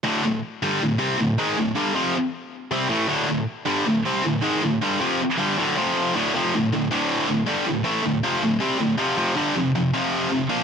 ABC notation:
X:1
M:4/4
L:1/8
Q:1/4=158
K:Dm
V:1 name="Distorted electric guitar" clef=bass
[D,,A,,D,] [D,,A,,] z [G,,D,G,] [D,,A,,] [C,G,C] [D,,A,,] [^G,,_E,^G,] | [D,,A,,] [G,,D,G,] [F,,C,F,] z3 [C,G,C] [A,,E,A,] | [D,,A,,D,] [D,,A,,] z [G,,D,G,] [D,,A,,] [C,G,C] [D,,A,,] [^G,,_E,^G,] | [D,,A,,] [G,,D,G,] [F,,C,F,] z [G,,D,G,] [D,,A,,D,] [F,,C,F,]2 |
[D,,A,,D,] [F,,C,F,] [D,,A,,] [D,,A,,] [D,,A,,D,]2 [D,,A,,] [G,,D,G,] | [D,,A,,] [A,,E,A,] [D,,A,,] [F,,C,F,] [D,,A,,] [C,G,C] [D,,A,,] [F,,C,F,] | [F,,C,F,] [G,,D,G,] [F,,C,] [F,,C,] [F,,C,F,]2 [F,,C,] [B,,F,B,] |]